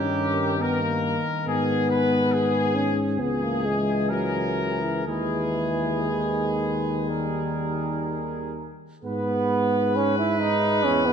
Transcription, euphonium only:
0.00 0.59 C#4 medium
0.59 0.83 B3 medium
0.81 1.24 A#3 medium
1.46 2.76 B3 medium
2.75 3.21 C#4 medium
3.19 3.44 B3 medium
3.43 3.67 A#3 medium
3.65 4.12 G#3 medium
4.11 4.84 F#3 medium
4.83 5.05 E3 medium
5.06 6.11 E3 medium
6.09 8.55 D#3 soft
9.03 11.13 G#4 medium

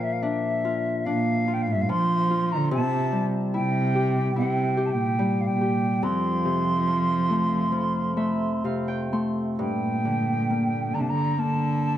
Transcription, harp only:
0.00 2.78 A#2 medium
0.00 1.88 F3 soft
0.00 2.18 A#3 soft
0.22 1.06 D4 medium
0.65 1.47 F4 medium
1.06 3.86 D4 medium
1.48 2.30 F4 medium
1.89 2.77 F3 medium
2.30 3.60 F4 medium
2.71 6.08 C3 medium
3.12 5.18 G3 medium
3.54 4.36 E4 medium
3.95 4.77 G4 medium
4.36 6.09 E4 medium
4.77 5.61 G4 medium
5.19 6.08 G3 soft
5.61 7.96 G4 soft
6.03 9.63 F2 medium
6.45 8.63 C3 soft
6.87 7.71 F3 soft
7.30 8.16 A3 medium
7.72 8.68 F3 soft
8.17 9.12 A3 soft
8.17 8.71 E5 medium
8.64 9.63 C3 soft
8.64 10.31 F5 medium
8.88 10.43 G5 medium
9.13 10.56 A3 soft
9.13 10.43 C6 medium
9.59 11.98 G2 medium
10.05 11.98 D3 soft
10.50 11.37 A#3 soft
10.95 11.98 D4 soft
11.38 11.98 A#3 soft

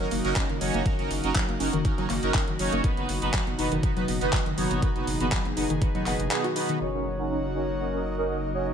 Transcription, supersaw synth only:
0.24 0.33 C#4 loud
0.24 0.33 D#4 medium
0.24 0.33 F#4 medium
0.24 0.33 A#4 loud
0.36 0.43 C#4 medium
0.36 0.43 D#4 medium
0.36 0.43 A#4 medium
0.61 0.83 C#4 medium
0.61 0.83 D#4 medium
0.61 0.83 F#4 medium
0.61 0.83 C#5 medium
0.86 0.93 C#4 medium
0.86 0.93 F#4 medium
0.86 0.93 A#4 loud
0.99 1.09 C#4 medium
0.99 1.09 D#4 medium
0.99 1.09 F#4 medium
0.99 1.09 A#4 medium
1.24 1.30 C#4 medium
1.24 1.30 D#4 medium
1.24 1.30 F#4 medium
1.24 1.30 A#4 loud
1.35 1.42 C#4 loud
1.35 1.42 D#4 medium
1.35 1.42 F#4 medium
1.35 1.42 A#4 loud
1.60 1.67 C#4 medium
1.60 1.67 D#4 medium
1.60 1.67 F#4 medium
1.60 1.67 A#4 medium
1.85 1.92 C#4 medium
1.85 1.92 D#4 medium
1.85 1.92 F#4 medium
1.85 1.92 A#4 medium
1.98 2.04 C#4 medium
1.98 2.04 D#4 medium
1.98 2.04 F#4 medium
1.98 2.04 A#4 loud
2.23 2.32 C#4 medium
2.23 2.32 D#4 medium
2.23 2.32 F#4 medium
2.23 2.32 A#4 loud
2.59 2.81 C#4 medium
2.59 2.81 D#4 medium
2.59 2.81 F#4 medium
2.59 2.81 C#5 medium
2.84 2.91 B3 medium
2.84 2.91 B4 loud
2.97 3.07 B3 medium
2.97 3.07 D#4 medium
2.97 3.07 F#4 medium
2.97 3.07 B4 medium
3.22 3.28 B3 loud
3.22 3.28 D#4 medium
3.22 3.28 F#4 medium
3.22 3.28 B4 loud
3.34 3.41 D#4 medium
3.34 3.41 F#4 medium
3.58 3.66 B3 medium
3.58 3.66 D#4 medium
3.58 3.66 F#4 medium
3.58 3.66 B4 medium
3.83 3.90 B3 medium
3.83 3.90 D#4 medium
3.83 3.90 F#4 medium
3.83 3.90 B4 medium
3.96 4.03 B3 medium
3.96 4.03 D#4 medium
3.96 4.03 F#4 medium
3.96 4.03 B4 loud
4.21 4.30 B3 medium
4.21 4.30 D#4 medium
4.21 4.30 F#4 medium
4.21 4.30 B4 loud
4.33 4.40 B3 medium
4.33 4.40 D#4 medium
4.58 4.80 B3 medium
4.58 4.80 D#4 medium
4.58 4.80 F#4 medium
4.58 4.80 C#5 medium
4.82 4.90 B3 medium
4.82 4.89 D#4 medium
4.82 4.89 F#4 medium
4.82 4.90 B4 loud
4.95 5.06 B3 medium
4.95 5.06 D#4 medium
4.95 5.06 F#4 medium
4.95 5.06 B4 medium
5.20 5.27 B3 loud
5.20 5.27 D#4 medium
5.20 5.27 F#4 medium
5.20 5.27 B4 loud
5.57 5.64 B3 medium
5.57 5.64 D#4 medium
5.57 5.64 F#4 medium
5.57 5.64 B4 medium
5.81 5.89 B3 medium
5.81 5.89 D#4 medium
5.81 5.89 F#4 medium
5.81 5.89 B4 medium
5.95 6.01 B3 medium
5.95 6.01 D#4 medium
5.95 6.01 F#4 medium
5.95 6.01 B4 loud
6.06 6.13 B3 medium
6.06 6.13 D#4 medium
6.06 6.13 F#4 medium
6.06 6.13 B4 medium
6.31 6.42 B3 medium
6.31 6.42 D#4 medium
6.31 6.42 F#4 medium
6.31 6.42 G#4 medium
6.56 6.78 B3 medium
6.56 6.78 D#4 medium
6.56 6.78 F#4 medium
6.56 6.78 B4 medium
6.81 6.88 C#4 medium
6.81 6.88 D#4 medium
6.81 6.88 F#4 medium
6.81 6.88 A#4 loud
6.94 7.04 C#4 medium
6.94 7.04 D#4 medium
6.94 7.04 F#4 medium
6.94 7.04 A#4 medium
7.19 7.25 C#4 medium
7.19 7.25 D#4 medium
7.19 7.25 F#4 medium
7.19 7.25 A#4 loud
7.30 7.37 C#4 medium
7.30 7.37 D#4 medium
7.30 7.37 F#4 medium
7.30 7.37 A#4 loud
7.55 7.62 C#4 medium
7.55 7.62 D#4 medium
7.55 7.62 F#4 medium
7.55 7.62 A#4 medium
7.80 7.87 C#4 medium
7.80 7.87 D#4 medium
7.80 7.87 F#4 medium
7.80 7.87 A#4 medium
7.93 7.99 C#4 medium
7.93 7.99 D#4 medium
7.93 7.99 F#4 medium
7.93 7.99 A#4 medium
8.18 8.27 C#4 medium
8.18 8.27 D#4 medium
8.18 8.27 F#4 medium
8.18 8.27 A#4 loud
8.29 8.37 C#4 medium
8.29 8.37 D#4 medium
8.29 8.36 F#4 medium
8.29 8.37 A#4 medium
8.54 8.74 C#4 medium
8.54 8.74 D#4 medium
8.54 8.74 F#4 medium
8.54 8.74 C#5 medium

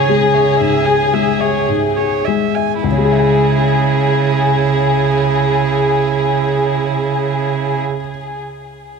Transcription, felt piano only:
0.00 0.57 C#2 soft
0.00 0.60 G#2 soft
0.00 0.09 G#3 soft
0.00 0.87 G#4 soft
0.00 0.34 E5 soft
0.09 0.50 G#3 soft
0.34 0.76 E5 soft
0.60 1.03 G#2 soft
0.87 1.30 G#4 soft
1.13 1.57 G#3 soft
1.41 1.85 E5 soft
1.69 2.14 G#2 soft
1.98 2.44 G#4 soft
2.28 2.74 G#3 soft
2.56 2.85 E5 soft
2.84 7.80 C#2 soft
2.91 7.87 C#3 soft
2.98 7.94 G#3 soft
3.05 8.01 G#4 soft
3.12 8.08 E5 soft
3.19 8.15 G#5 soft

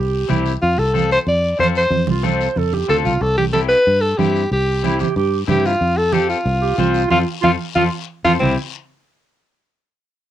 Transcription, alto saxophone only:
0.62 0.80 F4 medium
0.79 1.11 A4 loud
1.12 1.19 C5 loud
1.28 1.58 D5 loud
1.60 1.67 C5 medium
1.77 2.07 C5 medium
2.90 2.97 A4 medium
3.05 3.23 F4 medium
3.22 3.37 A4 loud
3.38 3.45 G4 medium
3.53 3.61 A4 medium
3.69 4.02 B4 loud
4.01 4.19 A4 loud
4.18 4.51 G4 medium
4.52 4.97 G4 medium
5.50 5.68 G4 loud
5.66 5.99 F4 loud
5.98 6.15 A4 loud
6.13 6.29 G4 loud
6.29 7.07 F4 medium
7.12 7.19 F4 loud
7.44 7.51 F4 loud
7.76 7.84 F4 medium
8.25 8.32 F4 loud
8.40 8.55 C4 medium

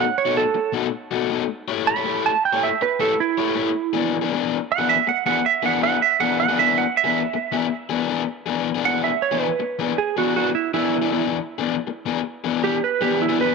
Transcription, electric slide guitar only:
0.00 0.17 F#5 medium
0.18 0.36 C#5 medium
0.37 0.73 A4 loud
1.87 2.23 B5 loud
2.26 2.43 A5 loud
2.45 2.62 G5 medium
2.63 2.81 E5 loud
2.82 3.00 B4 loud
3.01 3.18 A4 loud
3.20 4.29 E4 loud
4.72 4.89 F#5 loud
4.89 5.07 E5 loud
5.09 5.25 F#5 loud
5.26 5.44 F#5 loud
5.46 5.64 E5 loud
5.66 5.82 F#5 medium
5.83 6.01 F#5 loud
6.02 6.20 E5 loud
6.20 6.38 F#5 loud
6.40 6.58 F#5 loud
6.59 6.77 E5 loud
6.78 6.96 F#5 medium
6.97 8.06 E5 loud
8.85 9.03 F#5 medium
9.04 9.22 E5 medium
9.22 9.42 C#5 medium
9.42 9.97 B4 medium
9.98 10.16 G#4 medium
10.18 10.35 F#4 loud
10.36 10.54 F#4 medium
10.55 10.73 E4 medium
10.74 11.29 E4 loud
12.64 12.82 G4 medium
12.84 13.01 B4 medium
13.02 13.20 G4 medium
13.22 13.39 E4 medium
13.41 13.55 B4 medium

